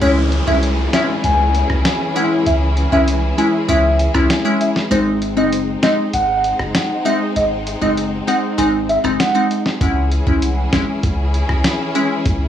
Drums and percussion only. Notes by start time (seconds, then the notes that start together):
0.02 closed hi-hat
0.32 closed hi-hat
0.63 closed hi-hat
0.93 snare, closed hi-hat
1.24 closed hi-hat
1.55 closed hi-hat
1.70 cross-stick
1.85 snare, closed hi-hat
2.16 closed hi-hat
2.46 closed hi-hat
2.77 closed hi-hat
3.08 closed hi-hat
3.38 closed hi-hat
3.69 closed hi-hat
3.99 closed hi-hat
4.15 cross-stick
4.30 snare, closed hi-hat
4.61 closed hi-hat
4.76 snare
4.91 closed hi-hat
5.22 closed hi-hat
5.53 closed hi-hat
5.83 snare, closed hi-hat
6.13 closed hi-hat
6.44 closed hi-hat
6.59 cross-stick
6.75 snare, closed hi-hat
7.06 closed hi-hat
7.36 closed hi-hat
7.67 closed hi-hat
7.97 closed hi-hat
8.28 closed hi-hat
8.59 closed hi-hat
8.89 closed hi-hat
9.05 cross-stick
9.20 snare, closed hi-hat
9.51 closed hi-hat
9.66 snare
9.81 kick, closed hi-hat
10.12 closed hi-hat
10.27 kick
10.42 closed hi-hat
10.73 kick, snare, closed hi-hat
11.03 kick, closed hi-hat
11.34 closed hi-hat
11.49 cross-stick
11.64 snare, closed hi-hat
11.95 closed hi-hat
12.26 kick, closed hi-hat